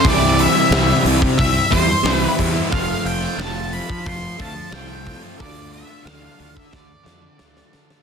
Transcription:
0.04 0.46 C2 medium
0.04 0.70 C3 medium
0.04 0.71 E3 loud
0.04 0.56 G3 medium
0.04 0.56 C4 loud
0.04 0.53 E4 loud
0.04 0.40 D5 medium
0.04 kick loud
0.04 open hi-hat medium
0.39 1.02 E5 medium
0.39 open hi-hat medium
0.54 0.72 G3 medium
0.54 0.74 C4 medium
0.54 0.73 E4 medium
0.71 0.91 C2 medium
0.71 1.38 C3 medium
0.71 1.03 E3 loud
0.71 1.05 G3 loud
0.71 1.07 C4 loud
0.71 snare loud
0.71 open hi-hat medium
0.75 1.06 E4 loud
1.04 1.25 C2 medium
1.04 1.21 E3 medium
1.04 1.21 G3 medium
1.04 1.21 C4 medium
1.04 1.21 E4 medium
1.04 open hi-hat medium
1.22 muted distorted electric guitar stroke medium
1.22 kick medium
1.38 1.59 C2 medium
1.38 1.72 E5 loud
1.38 kick loud
1.38 open hi-hat medium
1.71 1.93 E2 medium
1.71 1.88 E3 medium
1.71 1.88 G3 medium
1.71 1.87 C4 medium
1.71 1.87 E4 medium
1.71 2.16 C5 medium
1.71 kick medium
1.71 open hi-hat medium
1.88 muted distorted electric guitar stroke soft
2.03 2.25 C2 medium
2.03 2.55 C3 loud
2.03 2.36 E3 loud
2.03 2.23 G3 loud
2.03 2.21 C4 loud
2.03 2.20 E4 loud
2.03 snare loud
2.03 open hi-hat medium
2.16 2.35 B4 medium
2.21 2.38 G3 medium
2.21 2.39 C4 medium
2.21 2.40 E4 medium
2.37 2.60 E2 medium
2.37 2.68 E3 medium
2.37 2.56 G3 medium
2.37 2.54 C4 medium
2.37 kick medium
2.37 open hi-hat medium
2.41 2.53 E4 medium
2.54 2.70 G3 medium
2.54 2.70 C4 medium
2.54 2.69 E4 medium
2.69 2.93 F1 medium
2.69 3.37 F3 medium
2.69 3.23 A3 medium
2.69 3.20 C4 loud
2.69 3.20 F4 loud
2.69 3.03 F5 loud
2.69 kick loud
2.69 open hi-hat medium
3.05 3.26 F1 medium
3.05 3.37 G5 medium
3.05 open hi-hat medium
3.20 3.38 A3 medium
3.20 3.39 C4 medium
3.20 3.41 F4 medium
3.37 3.80 F1 loud
3.37 3.71 F3 loud
3.37 3.72 A3 loud
3.37 3.73 C4 loud
3.37 3.74 F4 loud
3.37 3.74 A5 loud
3.37 snare loud
3.37 open hi-hat medium
3.71 4.37 F3 medium
3.71 3.89 A3 medium
3.71 3.89 C4 medium
3.71 3.89 F4 medium
3.71 4.04 B5 loud
3.71 open hi-hat medium
3.89 muted distorted electric guitar stroke medium
3.89 kick medium
4.06 4.27 F1 loud
4.06 4.38 C6 loud
4.06 kick loud
4.06 open hi-hat medium
4.37 4.60 D2 medium
4.37 4.70 F3 medium
4.37 4.56 A3 medium
4.37 4.54 C4 medium
4.37 4.55 F4 medium
4.37 kick medium
4.37 open hi-hat medium
4.41 4.72 A5 loud
4.55 muted distorted electric guitar stroke medium
4.71 5.14 C2 loud
4.71 5.04 F3 medium
4.71 4.91 A3 medium
4.71 4.89 C4 loud
4.71 4.87 F4 loud
4.71 5.20 G5 loud
4.71 snare loud
4.71 open hi-hat medium
4.88 5.05 A3 medium
4.88 5.06 C4 medium
4.88 5.08 F4 medium
5.05 5.37 F3 medium
5.05 5.25 A3 medium
5.05 5.22 C4 medium
5.05 5.21 F4 medium
5.05 kick medium
5.05 open hi-hat medium
5.21 5.38 A3 medium
5.21 5.38 C4 medium
5.21 5.41 F4 medium
5.37 5.82 D2 loud
5.37 6.03 D3 medium
5.37 5.91 A3 medium
5.37 5.89 D4 loud
5.37 5.72 D5 medium
5.37 kick loud
5.37 open hi-hat medium
5.41 5.87 F4 loud
5.72 6.04 E5 medium
5.72 open hi-hat medium
5.88 6.05 A3 medium
5.88 6.05 D4 medium
5.88 6.07 F4 medium
6.04 6.27 D2 loud
6.04 6.36 D3 loud
6.04 6.37 A3 loud
6.04 6.38 D4 loud
6.04 6.39 F4 loud
6.04 6.56 F5 loud
6.04 snare loud
6.04 open hi-hat medium
6.37 6.61 D2 medium
6.37 6.89 D3 medium
6.37 6.54 A3 medium
6.37 6.53 D4 medium
6.37 6.54 F4 medium
6.37 open hi-hat medium
6.55 6.74 E5 medium
6.55 muted distorted electric guitar stroke soft
6.55 kick medium
6.73 6.94 D2 loud
6.73 7.75 D5 medium
6.73 kick loud
6.73 snare medium
7.03 7.27 F2 medium
7.03 7.36 D3 medium
7.03 7.21 A3 medium
7.03 7.21 D4 medium
7.03 7.20 F4 medium
7.03 snare medium
7.21 muted distorted electric guitar stroke soft
7.38 7.61 D2 medium
7.38 7.70 D3 medium
7.38 7.57 A3 loud
7.38 7.55 D4 loud
7.38 7.54 F4 loud
7.38 snare medium
7.55 7.71 A3 medium
7.55 7.72 D4 medium
7.55 7.73 F4 medium
7.55 snare medium
7.71 8.03 D3 medium
7.71 7.95 D3 medium
7.71 7.90 A3 medium
7.71 7.88 D4 medium
7.71 7.87 F4 medium
7.71 snare loud
7.88 8.03 A3 medium
7.88 8.03 D4 medium
7.88 8.03 F4 medium
7.88 snare medium

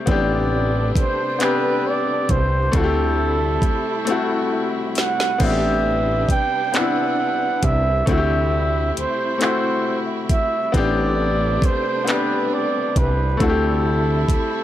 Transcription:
0.00 5.37 C3 medium
0.00 10.70 G3 medium
0.06 0.92 A1 loud
0.06 2.72 A3 medium
0.06 1.25 B3 medium
0.06 1.26 C4 medium
0.06 2.72 D4 medium
0.06 1.27 D4 medium
0.06 kick loud
0.06 closed hi-hat medium
0.10 1.28 G4 medium
0.10 0.93 D5 medium
0.96 1.05 C2 soft
0.96 1.39 C5 medium
0.96 kick loud
0.96 closed hi-hat medium
1.39 2.58 B3 medium
1.39 2.59 C4 medium
1.39 2.60 D4 medium
1.39 1.90 B4 medium
1.39 clap loud
1.39 closed hi-hat medium
1.44 2.61 G4 medium
1.88 2.33 D5 medium
2.29 2.70 C2 loud
2.29 2.78 C5 medium
2.29 kick medium
2.29 closed hi-hat medium
2.72 3.59 D2 loud
2.72 3.91 A3 medium
2.72 3.92 C4 medium
2.72 5.38 E4 medium
2.72 3.93 E4 medium
2.72 kick loud
2.72 closed hi-hat medium
2.76 2.82 F#4 medium
2.76 4.70 A4 medium
2.84 3.97 G4 medium
3.62 3.71 D2 soft
3.62 kick loud
3.62 closed hi-hat medium
4.05 5.25 A3 medium
4.05 5.26 C4 medium
4.05 5.26 E4 medium
4.05 closed hi-hat medium
4.11 5.27 F#4 medium
4.95 5.45 F#5 medium
4.95 snare medium
4.95 closed hi-hat medium
5.20 snare medium
5.38 6.26 A1 loud
5.38 10.69 C3 medium
5.38 6.58 B3 medium
5.38 6.59 C4 medium
5.38 8.04 D4 medium
5.38 6.60 D4 medium
5.38 8.04 B4 medium
5.38 kick loud
5.38 crash medium
5.44 5.49 F#4 medium
5.44 6.31 E5 loud
5.50 6.64 G4 medium
6.29 6.38 C2 soft
6.29 6.78 G5 loud
6.29 kick loud
6.29 closed hi-hat medium
6.72 7.91 B3 medium
6.72 7.92 C4 medium
6.72 7.93 D4 medium
6.72 clap loud
6.72 closed hi-hat medium
6.77 7.94 E4 medium
6.77 7.66 F#5 loud
7.63 8.03 C2 loud
7.63 8.08 E5 loud
7.63 kick medium
7.63 closed hi-hat medium
8.06 8.92 D2 loud
8.06 9.25 A3 medium
8.06 9.26 C4 medium
8.06 10.71 E4 medium
8.06 9.27 E4 medium
8.06 8.93 E5 medium
8.06 kick loud
8.06 closed hi-hat medium
8.11 8.16 F#4 medium
8.18 9.31 G4 medium
8.97 9.06 D2 soft
8.97 9.39 C5 medium
8.97 closed hi-hat medium
9.38 10.58 A3 medium
9.38 10.58 C4 medium
9.38 10.59 E4 medium
9.38 closed hi-hat medium
9.43 10.61 F#4 medium
9.43 9.99 C5 medium
9.43 clap loud
10.30 10.71 E5 medium
10.30 kick medium
10.30 closed hi-hat medium
10.72 11.59 A1 loud
10.72 14.64 C3 medium
10.72 14.64 G3 medium
10.72 13.38 A3 medium
10.72 11.91 B3 medium
10.72 11.92 C4 medium
10.72 13.38 D4 medium
10.72 11.93 D4 medium
10.72 11.67 D5 loud
10.72 kick loud
10.72 closed hi-hat medium
10.78 11.94 G4 loud
11.62 11.72 C2 soft
11.62 12.09 C5 medium
11.62 kick loud
11.62 closed hi-hat medium
12.04 13.24 B3 medium
12.04 13.25 C4 medium
12.04 13.26 D4 medium
12.04 closed hi-hat medium
12.09 13.27 G4 medium
12.09 12.55 B4 medium
12.09 clap loud
12.54 13.00 D5 medium
12.96 13.37 C2 loud
12.96 13.43 B4 medium
12.96 kick medium
12.96 closed hi-hat medium
13.37 14.26 D2 loud
13.37 14.57 A3 medium
13.37 14.59 C4 medium
13.37 14.64 E4 medium
13.37 kick loud
13.37 closed hi-hat medium
13.41 14.59 E4 medium
13.41 13.48 F#4 medium
13.41 14.64 A4 medium
13.49 14.63 G4 medium
14.28 kick loud
14.28 closed hi-hat medium

